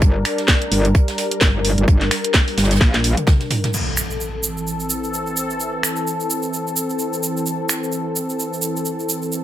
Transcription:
Already playing: G3 D4 A#4
0.02 G1, kick, closed hi-hat
0.25 finger snap, closed hi-hat, open hi-hat
0.38 snare, closed hi-hat
0.48 kick, snare, closed hi-hat
0.62 closed hi-hat
0.72 G1, closed hi-hat, open hi-hat
0.85 closed hi-hat
0.95 kick, closed hi-hat
1.08 snare, closed hi-hat
1.18 snare, closed hi-hat, open hi-hat
1.31 closed hi-hat
1.41 G1, kick, snare, closed hi-hat
1.65 closed hi-hat, open hi-hat
1.78 G1, closed hi-hat
1.88 G1, kick, closed hi-hat
2.01 snare, closed hi-hat
2.11 finger snap, closed hi-hat, open hi-hat
2.24 closed hi-hat
2.33 kick, snare, closed hi-hat
2.48 open hi-hat
2.58 G1, snare, closed hi-hat, open hi-hat
2.64 snare, closed hi-hat
2.71 snare, closed hi-hat
2.75 snare, closed hi-hat
2.81 A#1, kick, snare, closed hi-hat
2.94 snare, closed hi-hat
3.04 snare, closed hi-hat, open hi-hat
3.17 closed hi-hat, mid tom
3.27 kick, snare, closed hi-hat, mid tom
3.40 snare, closed hi-hat
3.50 closed hi-hat, mid tom, open hi-hat
3.64 snare, closed hi-hat, mid tom
3.74 E3 C4 A4, crash, impact, shaker
3.97 finger snap, shaker
4.10 shaker
4.21 shaker
4.43 shaker
4.57 shaker
4.67 shaker
4.80 shaker
4.90 shaker
5.04 shaker
5.14 shaker
5.26 shaker
5.37 shaker
5.50 shaker
5.60 shaker
5.83 finger snap, shaker
5.96 shaker
6.07 shaker
6.20 shaker
6.30 shaker
6.42 shaker
6.53 shaker
6.67 shaker
6.76 shaker
6.90 shaker
6.99 shaker
7.13 shaker
7.23 shaker
7.37 shaker
7.46 shaker
7.69 finger snap, shaker
7.83 shaker
7.92 shaker
8.16 shaker
8.29 shaker
8.39 shaker
8.53 shaker
8.62 shaker
8.76 shaker
8.85 shaker
8.99 shaker
9.09 shaker
9.22 shaker
9.32 shaker

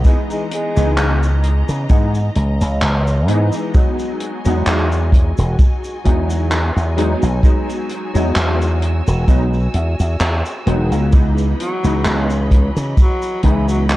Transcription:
Already playing: E3 D#5
0.04 E3 G#3 B3 D#4 A#5, kick, closed hi-hat, cabasa
0.30 G#3, closed hi-hat, cabasa
0.51 G#3, closed hi-hat
0.75 C#2 E3 G#3 B3 D#4, closed hi-hat, cabasa
0.97 C#2, clap, closed hi-hat, cabasa
1.23 closed hi-hat, cabasa
1.43 closed hi-hat
1.69 C#3, closed hi-hat, cabasa
1.89 G#2 E3 G#3 B3 D#4, kick, closed hi-hat, cabasa
2.15 closed hi-hat, cabasa
2.35 C#2, closed hi-hat
2.61 C#2, closed hi-hat, cabasa
2.81 C#2, clap, closed hi-hat, cabasa
3.07 closed hi-hat, cabasa
3.27 G#2 E3 G#3 B3 D#4, closed hi-hat
3.52 closed hi-hat, cabasa
3.74 F#3 G#3 B3 D#4 F#4 G#5, kick, closed hi-hat, cabasa
3.99 closed hi-hat, cabasa
4.20 closed hi-hat
4.45 E2 F#3 G#3 B3 D#4, closed hi-hat, cabasa
4.66 E2, clap, closed hi-hat, cabasa
4.92 closed hi-hat, cabasa
5.12 kick, closed hi-hat
5.37 E1, closed hi-hat, cabasa
5.59 kick, closed hi-hat, cabasa
5.84 closed hi-hat, cabasa
6.04 E2 F#3 G#3 B3 D#4, kick, closed hi-hat
6.30 closed hi-hat, cabasa
6.51 clap, closed hi-hat, cabasa
6.76 E2, closed hi-hat, cabasa
6.97 F#3 G#3 B3 D#4, closed hi-hat
7.22 B1, closed hi-hat, cabasa
7.43 F#3 G#3 B3 D#4 E6, kick, closed hi-hat, cabasa
7.69 closed hi-hat, cabasa
7.89 closed hi-hat
8.14 E2 F#3 G#3 B3 D#4, closed hi-hat, cabasa
8.36 E2, clap, closed hi-hat, cabasa
8.61 closed hi-hat, cabasa
8.82 closed hi-hat
9.07 E1, closed hi-hat, cabasa
9.27 B1 F#3 G#3 B3 D#4, kick, closed hi-hat, cabasa
9.54 closed hi-hat, cabasa
9.74 E2, closed hi-hat
10.00 E2, closed hi-hat, cabasa
10.20 E2, clap, closed hi-hat, cabasa
10.46 closed hi-hat, cabasa
10.66 E1 F#3 G#3 B3 D#4, closed hi-hat
10.92 C#2, closed hi-hat, cabasa
11.12 E3 G#3 B3 D#4 D#5 B5, kick, closed hi-hat, cabasa
11.38 closed hi-hat, cabasa
11.59 F#3, closed hi-hat
11.83 C#2 E3 G#3 B3 D#4, closed hi-hat, cabasa
12.05 C#2, clap, closed hi-hat, cabasa
12.30 closed hi-hat, cabasa
12.51 kick, closed hi-hat
12.76 C#3, closed hi-hat, cabasa
12.97 F#3, kick, closed hi-hat, cabasa
13.22 closed hi-hat, cabasa
13.43 C#2 E3 G#3 B3 D#4, kick, closed hi-hat
13.69 F#3, closed hi-hat, cabasa
13.90 F#3, clap, closed hi-hat, cabasa

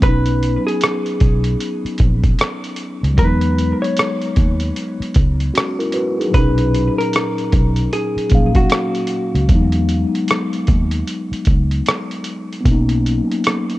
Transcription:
Already playing: B3
0.00 B1 F#3 B4, kick, closed hi-hat
0.06 C#4 D#4
0.26 closed hi-hat
0.43 closed hi-hat
0.67 G#4, closed hi-hat
0.81 cross-stick, closed hi-hat
1.06 closed hi-hat
1.20 B1, kick, closed hi-hat
1.44 closed hi-hat
1.60 closed hi-hat
1.85 muted fingered electric bass stroke, closed hi-hat
1.98 A#1, kick, closed hi-hat
2.23 kick, closed hi-hat
2.39 cross-stick, closed hi-hat
2.64 closed hi-hat
2.76 closed hi-hat
3.03 C#2, closed hi-hat
3.14 E2 F#3 G#3, kick, closed hi-hat
3.19 B3 B4
3.25 D#4
3.41 closed hi-hat
3.58 closed hi-hat
3.82 C#5, closed hi-hat
3.97 cross-stick, closed hi-hat
4.22 closed hi-hat
4.36 D#2, kick, closed hi-hat
4.60 closed hi-hat
4.76 closed hi-hat
5.00 muted fingered electric bass stroke, closed hi-hat
5.14 C#2, kick, closed hi-hat
5.40 closed hi-hat
5.54 C#4 F#4, cross-stick, closed hi-hat
5.79 E4 A#4, closed hi-hat
5.92 F#4 B4, closed hi-hat
6.19 D#4 G#4, closed hi-hat
6.28 A#2 F#3
6.34 B1 C#4 B4, kick, closed hi-hat
6.38 D#4
6.58 closed hi-hat
6.74 closed hi-hat
6.98 A#4, closed hi-hat
7.13 cross-stick, closed hi-hat
7.38 closed hi-hat
7.52 B1, kick, closed hi-hat
7.76 closed hi-hat
7.93 G#4, closed hi-hat
8.16 muted fingered electric bass stroke, closed hi-hat
8.29 A#1 F#3 A#3 C#4, kick, closed hi-hat
8.35 F5
8.55 F#4, kick, closed hi-hat
8.70 cross-stick, closed hi-hat
8.95 closed hi-hat
9.07 closed hi-hat
9.35 C#2, closed hi-hat
9.47 E2 F#3 G#3, kick, closed hi-hat
9.52 B3 D#4
9.72 closed hi-hat
9.89 closed hi-hat
10.15 closed hi-hat
10.28 cross-stick, closed hi-hat
10.53 closed hi-hat
10.67 D#2, kick, closed hi-hat
10.91 closed hi-hat
11.08 closed hi-hat
11.32 muted fingered electric bass stroke, closed hi-hat
11.45 C#2, kick, closed hi-hat
11.71 closed hi-hat
11.86 cross-stick, closed hi-hat
12.11 closed hi-hat
12.24 closed hi-hat
12.53 closed hi-hat
12.61 F#3 B3
12.65 B1 A#3 C#4, kick, closed hi-hat
12.72 D#4
12.89 closed hi-hat
13.06 closed hi-hat
13.31 closed hi-hat
13.44 cross-stick, closed hi-hat
13.70 closed hi-hat

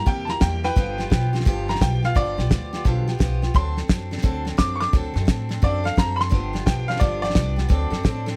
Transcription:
0.06 E2 C3 G3 A#3 E4 G4 G5, kick, snare
0.25 G4 A5, snare
0.29 A#3 E4 A#5
0.40 E2 G3 A#3 E4 G4 G5, kick, snare, hi-hat pedal
0.64 A#3 E4 G4 B4 G5, snare
0.76 G1 G2 D3 F3 B3 F4 G4, kick, snare
0.98 F3 B3 F4 G4, snare
1.10 B1 F3 B3 F4 G4, kick, snare, hi-hat pedal
1.33 F3 B3 F4 G4, snare
1.40 snare
1.45 G1 G2 D3 F3 B3 F4 G4, kick, snare
1.68 F3 B3 F4 G4 A#5, snare
1.75 snare
1.80 B1 F3 B3 G5, kick, snare, hi-hat pedal
2.03 F3 B3 F4 G4 F5, snare
2.15 G1 G2 D3 F3 B3 F4 G4 D5, kick, snare
2.37 B1 F3 B3 F4 G4, snare
2.49 D2 F3 B3 F4 G4, kick, snare, hi-hat pedal
2.73 F3 B3 F4 G4, snare
2.85 B1 G2 D3 F3 B3 F4 G4, kick, snare
3.08 F3 B3 F4 G4, snare
3.19 B1 F3 B3 F4 G4, kick, snare, hi-hat pedal
3.42 F3 B3 F4 G4, snare
3.54 D2 D3 F#3 C4 D4 A4 C6, kick, snare
3.77 C4 D4 A4, snare
3.88 F#2 F#3 C4 D4 A4, kick, snare, hi-hat pedal
4.11 C4 D4 A4, snare
4.18 snare
4.22 D2 D3 F#3 C4 D4 A4, kick, snare
4.45 C4 D4 A4, snare
4.57 F#2 F#3 C4 D4 A4 D6, kick, snare, hi-hat pedal
4.76 C#6
4.80 C4 D4 A4 D6, snare
4.93 D2 D3 F#3 C4 D4 A4, kick, snare
5.14 F#2 C4 D4 A4, snare
5.25 A2 F#3 C4 D4 A4, kick, snare, hi-hat pedal
5.49 C4 D4 A4, snare
5.62 F#2 D3 F#3 C4 D4 A4 D5, kick, snare
5.84 C4 D4 A4 F5, snare
5.96 F#2 F#3 C4 D4 A4 A#5, kick, snare, hi-hat pedal
6.16 D4 A4 B5
6.20 C4 C6, snare
6.30 G1 G2 D3 F3 B3 D4 G4, kick, snare
6.53 F3 B3 D4 G4, snare
6.66 B1 F3 B3 D4 G4 G5, kick, snare, hi-hat pedal
6.88 F3 B3 D4 G4 F5, snare
6.96 G2 D5, snare
7.00 G1 D3 F3 B3 D4 G4, kick, snare
7.22 F3 B3 D4 G4 D5, snare
7.30 F3, snare
7.35 C2 B3 D4 G4, kick, snare, hi-hat pedal
7.56 F3 B3 D4 G4, snare
7.69 D2 D3 F#3 C4 D4 A4, kick, snare
7.90 F#2 C4 D4 A4, snare
8.03 A2 F#3 C4 D4 A4, kick, snare, hi-hat pedal
8.26 C4 D4 A4, snare

